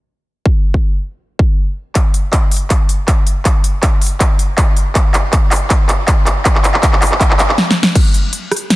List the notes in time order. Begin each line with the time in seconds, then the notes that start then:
0.46 kick
0.74 kick
1.39 kick
1.95 kick, clap, closed hi-hat
2.14 closed hi-hat
2.33 kick, clap, closed hi-hat
2.52 open hi-hat
2.57 closed hi-hat
2.70 kick, clap, closed hi-hat
2.89 closed hi-hat
3.08 kick, clap, closed hi-hat
3.27 closed hi-hat
3.45 kick, clap, closed hi-hat
3.64 closed hi-hat
3.83 kick, clap, closed hi-hat
4.02 open hi-hat
4.07 closed hi-hat
4.20 kick, clap, closed hi-hat
4.39 closed hi-hat
4.58 kick, clap, closed hi-hat
4.77 closed hi-hat
4.95 kick, clap, closed hi-hat
5.14 clap, closed hi-hat
5.33 kick, clap, closed hi-hat
5.51 clap, open hi-hat
5.56 closed hi-hat
5.70 kick, clap, closed hi-hat
5.89 clap, closed hi-hat
6.08 kick, clap, closed hi-hat
6.27 clap, closed hi-hat
6.45 kick, clap, closed hi-hat
6.55 clap
6.64 clap, closed hi-hat
6.74 clap
6.83 kick, clap, closed hi-hat
6.93 clap
7.02 clap, open hi-hat
7.07 closed hi-hat
7.12 clap
7.20 kick, clap, closed hi-hat
7.31 clap
7.39 clap, closed hi-hat
7.49 clap
7.58 snare
7.71 snare
7.83 snare
7.95 kick, closed hi-hat, crash
8.14 closed hi-hat
8.33 closed hi-hat
8.52 cross-stick, closed hi-hat
8.56 closed hi-hat
8.70 snare, closed hi-hat